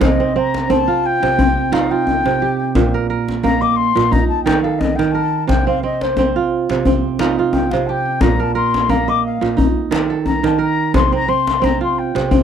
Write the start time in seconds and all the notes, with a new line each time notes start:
Already playing: D#4 G4 A#4
0.01 C3 D#5, djembe slap, djembe bass
0.20 C4, djembe slap
0.36 C4 A#5, djembe slap
0.54 djembe slap
0.70 C4 A5, djembe slap, djembe tone
0.88 F4
1.05 G5
1.23 C3, djembe slap
1.39 C4, djembe bass
1.57 djembe slap
1.72 D#4 F4 F5, djembe slap
1.91 F4 G5
2.07 djembe tone
2.25 C3, djembe slap
2.42 G4
2.60 djembe slap
2.75 A#2, djembe slap, djembe bass
2.94 A#4
3.10 A#4
3.28 djembe slap
3.43 A#3 A#5, djembe tone
3.61 D#5 D6, djembe slap
3.76 C6, djembe slap
3.95 A#2, djembe slap
4.11 D#4 A#5, djembe slap, djembe bass
4.28 A5
4.32 djembe slap
4.43 D#3 A4 G5, djembe slap
4.62 A4 F5
4.79 D#5, djembe tone
4.95 D#3 G5, djembe slap
5.11 A#4 A5, djembe slap
5.47 C3 G5, djembe slap, djembe bass
5.67 C4 F5, djembe slap
5.83 C4 D#5, djembe slap
6.01 C5, djembe slap
6.17 C4, djembe slap, djembe tone
6.36 F4
6.70 C3, djembe slap
6.85 C4, djembe bass
7.04 djembe slap
7.19 D#4 F4, djembe slap
7.39 F4
7.52 G5, djembe tone
7.71 C3 F5, djembe slap
7.87 G4 A5
7.91 G5
8.05 djembe slap
8.21 A#2 A#5, djembe slap, djembe bass
8.40 A#4 A5, djembe slap
8.55 A#4 C6
8.74 djembe slap
8.89 A#3 A#5, djembe slap, djembe tone
9.08 D#5 D6
9.26 F5
9.41 A#2, djembe slap
9.57 D#4, djembe bass
9.77 djembe slap
9.91 D#3 A4, djembe slap
10.10 A4
10.25 A#5, djembe tone
10.43 D#3 A5, djembe slap
10.59 A#4 A#5
10.94 C3 C6, djembe slap, djembe bass
11.12 C4 A#5, djembe slap
11.28 C4 C6, djembe slap
11.47 djembe slap
11.62 C4 A#5, djembe slap, djembe tone
11.81 F4 C6
11.98 G5
12.15 C3, djembe slap
12.31 C4, djembe bass